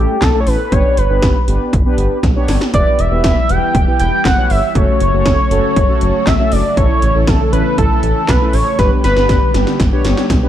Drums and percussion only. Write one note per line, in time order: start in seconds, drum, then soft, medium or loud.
0.22 kick loud
0.22 snare loud
0.22 clap medium
0.22 closed hi-hat medium
0.47 open hi-hat medium
0.72 kick loud
0.72 closed hi-hat medium
0.97 closed hi-hat medium
1.22 kick loud
1.22 snare loud
1.22 closed hi-hat medium
1.48 closed hi-hat medium
1.73 kick loud
1.73 closed hi-hat medium
1.98 closed hi-hat medium
2.23 kick loud
2.23 snare medium
2.23 closed hi-hat medium
2.48 snare loud
2.48 open hi-hat medium
2.61 snare medium
2.74 kick loud
2.74 closed hi-hat medium
2.99 closed hi-hat medium
3.24 kick loud
3.24 snare loud
3.24 closed hi-hat medium
3.49 closed hi-hat medium
3.75 kick loud
3.75 closed hi-hat medium
4.00 closed hi-hat medium
4.25 kick loud
4.25 snare loud
4.25 clap medium
4.25 closed hi-hat medium
4.50 open hi-hat medium
4.75 kick loud
4.75 closed hi-hat medium
5.00 closed hi-hat medium
5.26 kick loud
5.26 snare loud
5.26 closed hi-hat medium
5.51 closed hi-hat medium
5.76 kick loud
5.76 closed hi-hat medium
6.01 closed hi-hat medium
6.27 kick loud
6.27 snare loud
6.27 clap medium
6.27 closed hi-hat medium
6.52 open hi-hat medium
6.77 kick loud
6.77 closed hi-hat medium
7.02 closed hi-hat medium
7.27 kick loud
7.27 snare loud
7.27 closed hi-hat medium
7.53 closed hi-hat medium
7.78 kick loud
7.78 closed hi-hat medium
8.03 closed hi-hat medium
8.28 kick loud
8.28 snare loud
8.28 clap loud
8.28 closed hi-hat medium
8.53 open hi-hat medium
8.79 kick loud
8.79 snare medium
8.79 closed hi-hat medium
9.04 snare medium
9.04 closed hi-hat medium
9.16 snare medium
9.29 kick loud
9.29 snare medium
9.29 closed hi-hat medium
9.54 snare medium
9.54 closed hi-hat medium
9.67 snare medium
9.80 kick loud
9.80 snare medium
9.80 closed hi-hat medium
10.05 snare loud
10.05 closed hi-hat medium
10.17 snare medium
10.30 kick loud
10.30 snare loud
10.30 closed hi-hat medium